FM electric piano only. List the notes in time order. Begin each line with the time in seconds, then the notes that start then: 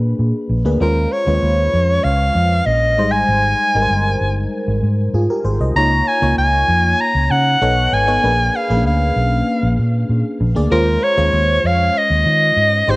Already playing: A#3 D4 G#4 B4
0.65 A#3 D4 G#4 B4
0.80 G#3 C#4 F4 C5
1.26 G#3 C#4 F4 B4
1.34 C#5
2.98 G3 G#3 D#4 C5
3.75 G3 G#3 D#4 A#4
3.82 C5
5.14 F4 G#4
5.30 G4 A#4
5.45 G#4 C5
5.61 C5 D#5
5.76 A#3 D#4 F4 C#5
6.22 A#3 D#4 F4 C#5
7.61 B3 D#4 A4 C#5
8.07 B3 D#4 A4 C#5
8.23 A#3 D4 G#4 B4
8.69 A#3 C#4 G#4 B4
8.76 D4
10.55 A#3 D4 G#4 D5
10.70 G#3 C#4 F4 C5
11.17 G#3 C#4 F4 C#5
12.88 G#3 D#4 G4 C5